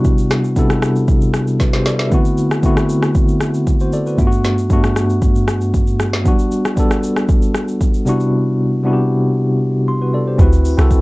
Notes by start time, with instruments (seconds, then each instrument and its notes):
Already playing: tine electric piano C3 G3 B3 D4 E4 F#4
0.05 kick, shaker
0.18 shaker
0.31 cross-stick, snare, shaker
0.44 shaker
0.55 tine electric piano C3 G3 B3 D4 E4 A4, kick, shaker
0.70 cross-stick, shaker
0.82 cross-stick, shaker
0.96 shaker
1.08 kick, shaker
1.21 shaker
1.34 cross-stick, shaker
1.47 shaker
1.60 tine electric piano F#4 B4, kick, snare, shaker
1.73 tine electric piano G4 C5, snare, shaker
1.86 tine electric piano A4 D5, snare, shaker
1.99 tine electric piano B4 E5, snare, shaker
2.10 tine electric piano D3 A3 B3 C4 E4 F#4, kick, shaker
2.25 shaker
2.38 shaker
2.51 cross-stick, shaker
2.62 tine electric piano D3 A3 B3 C4 E4 F#4, kick, shaker
2.77 cross-stick, shaker
2.89 shaker
3.02 cross-stick, shaker
3.15 kick, shaker
3.28 shaker
3.40 cross-stick, shaker
3.54 shaker
3.67 kick, shaker
3.80 tine electric piano F#4 C5, shaker
3.93 tine electric piano A4 D5, shaker
4.06 tine electric piano F#4 B4, shaker
4.17 tine electric piano G2 A3 B3 D4 F4, kick, shaker
4.27 tine electric piano F#4
4.32 shaker
4.44 snare, shaker
4.58 shaker
4.69 tine electric piano G2 A3 B3 D4 F#4, kick, shaker
4.84 cross-stick, shaker
4.96 cross-stick, shaker
5.10 shaker
5.22 kick, shaker
5.35 shaker
5.48 cross-stick, shaker
5.61 shaker
5.74 kick, shaker
5.87 shaker
6.00 cross-stick, shaker
6.13 snare, shaker
6.24 tine electric piano F#3 B3 D4 F#4, kick, shaker
6.30 tine electric piano G3
6.39 shaker
6.51 shaker
6.65 cross-stick, shaker
6.76 tine electric piano G3 B3 D4 A4, kick, shaker
6.91 cross-stick, shaker
7.03 shaker
7.16 cross-stick, shaker
7.29 kick, shaker
7.42 shaker
7.54 cross-stick, shaker
7.68 shaker
7.81 kick, shaker
7.94 shaker
8.05 tine electric piano C3 G3 B3 D4 E4 F#4, shaker
8.20 shaker
8.83 tine electric piano C3 G3 B3 D4 E4 F#4
8.93 tine electric piano G4
9.88 tine electric piano C6
10.02 tine electric piano F#4 B4
10.14 tine electric piano A4 D5
10.28 tine electric piano G4 C5
10.38 log drum bass D2, tine electric piano C4 E4 F#4 B4, kick, shaker
10.53 shaker
10.65 open hi-hat, shaker
10.77 log drum bass C2, tine electric piano C4 E4 F#4 A4, cross-stick, shaker
10.91 kick, shaker